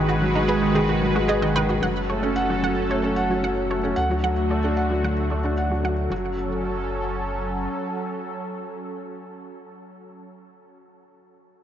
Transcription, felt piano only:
0.00 0.61 D#3 medium
0.22 0.29 F#3 medium
0.35 0.43 G#3 medium
0.48 0.61 G#4 loud
0.61 0.73 D#3 medium
0.75 0.83 D#3 medium
1.01 1.09 F#3 medium
1.15 1.23 G#3 medium
1.28 1.41 G#4 loud
1.42 1.54 D#3 medium
1.55 1.63 D#3 medium
1.82 1.90 F#3 medium
2.09 2.17 A3 medium
2.23 2.30 C#4 medium
2.36 2.49 F#5 medium
2.50 2.61 F#3 medium
2.63 2.71 F#3 medium
2.90 2.97 A3 medium
3.03 3.11 C#4 medium
3.16 3.29 F#5 medium
3.30 3.42 F#3 medium
3.43 3.51 F#3 medium
3.70 3.78 A3 medium
3.83 3.91 C#4 medium
3.96 4.09 F#5 medium
4.10 4.22 F#3 medium
4.23 4.31 F#3 medium
4.50 4.58 A3 medium
4.64 4.71 D4 medium
4.77 4.90 F#5 medium
4.90 5.02 F#3 medium
5.04 5.12 F#3 medium
5.30 5.38 A3 medium
5.44 5.52 D4 medium
5.57 5.70 F#5 medium
5.70 5.82 F#3 medium
5.84 5.92 F#3 medium
6.10 6.35 F#3 medium

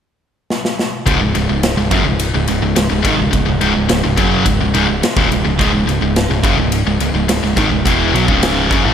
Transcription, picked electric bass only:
1.06 1.19 C#1 loud
1.22 1.34 C#1 medium
1.35 1.48 C#1 medium
1.49 1.75 C#1 medium
1.77 1.90 C#1 medium
1.91 2.04 F#1 medium
2.06 2.32 C#1 medium
2.35 2.47 C#1 medium
2.49 2.61 C#1 medium
2.62 2.75 C#1 medium
2.77 2.89 C#1 medium
2.90 3.03 C#1 medium
3.05 3.18 G#1 medium
3.19 3.32 C#1 medium
3.33 3.46 C#1 medium
3.48 3.60 C#1 medium
3.61 3.74 C#1 medium
3.77 3.89 C#1 medium
3.90 4.03 C#1 medium
4.04 4.17 C#1 medium
4.18 4.44 F#1 medium
4.45 4.59 C#1 medium
4.61 4.74 C#1 medium
4.75 4.88 C#1 loud
4.90 5.02 C#1 medium
5.17 5.30 D#1 medium
5.31 5.44 C#1 medium
5.46 5.59 C#1 medium
5.59 5.72 C#1 medium
5.74 5.86 C#1 medium
5.87 6.00 C#1 medium
6.01 6.28 C#1 medium
6.29 6.43 C#1 medium
6.44 6.57 F#1 loud
6.57 6.84 C#1 medium
6.86 6.98 C#1 medium
6.99 7.13 C#1 medium
7.13 7.27 C#1 medium
7.29 7.41 C#1 medium
7.42 7.56 C#1 medium
7.57 7.70 G#1 medium
7.70 7.84 C#1 medium
7.86 8.12 E1 medium
8.14 8.27 B1 medium
8.28 8.68 C#1 medium
8.71 8.84 F#1 medium
8.84 8.94 A1 loud

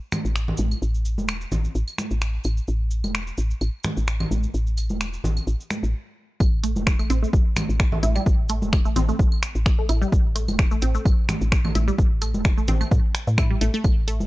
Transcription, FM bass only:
0.25 0.52 A1 medium
0.59 0.74 A1 loud
0.82 1.19 A1 loud
1.18 1.46 E1 medium
1.52 1.67 A1 medium
1.75 1.83 A1 loud
2.11 2.39 A1 medium
2.45 2.60 A1 loud
2.68 3.06 A1 loud
3.04 3.32 E1 medium
3.38 3.53 A1 medium
3.61 3.69 A1 loud
3.97 4.25 A1 medium
4.31 4.46 A1 loud
4.54 4.92 A1 loud
4.90 5.18 E1 medium
5.24 5.39 A1 medium
5.47 5.55 A1 loud
5.83 5.94 A1 medium
6.40 6.78 A1 loud
6.76 7.04 E1 medium
7.10 7.25 A1 medium
7.33 7.41 A1 loud
7.69 7.97 A1 medium
8.03 8.18 A1 loud
8.26 8.64 A1 loud
8.62 8.90 E1 medium
8.96 9.11 A1 medium
9.19 9.27 A1 loud
9.55 9.83 A1 medium
9.89 10.04 A1 loud
10.12 10.50 A1 loud
10.48 10.76 E1 medium
10.82 10.98 A1 medium
11.05 11.13 A1 loud
11.41 11.69 A1 medium
11.75 11.91 A1 loud
11.98 12.36 A1 loud
12.34 12.62 E1 medium
12.68 12.84 A1 medium
12.91 12.99 A2 medium
13.27 13.55 A2 medium
13.61 13.69 A1 loud
13.84 14.22 A1 loud
14.20 14.27 E1 medium

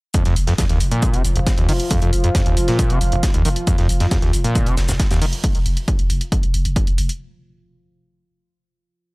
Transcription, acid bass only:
0.14 0.23 F2 medium
0.25 0.34 F2 loud
0.47 0.54 F2 medium
0.58 0.65 F2 loud
0.70 0.79 D#2 loud
0.92 1.15 A#2 medium
1.14 1.23 C3 medium
1.36 1.39 F1 medium
1.58 1.67 D#2 loud
1.69 1.72 D#3 medium
1.91 2.00 F2 medium
2.02 2.11 F2 loud
2.24 2.30 F2 loud
2.35 2.41 F2 medium
2.46 2.55 D#2 loud
2.68 2.92 A#2 medium
2.90 2.99 C3 medium
3.12 3.16 F1 medium
3.34 3.43 D#2 loud
3.45 3.49 D#3 medium
3.67 3.76 F2 medium
3.78 3.87 F2 loud
4.00 4.06 F2 loud
4.11 4.17 F2 loud
4.22 4.32 D#2 loud
4.44 4.68 A#2 medium
4.67 4.76 C3 loud
4.89 4.92 F1 medium
5.11 5.20 D#2 loud
5.22 5.25 D#3 medium

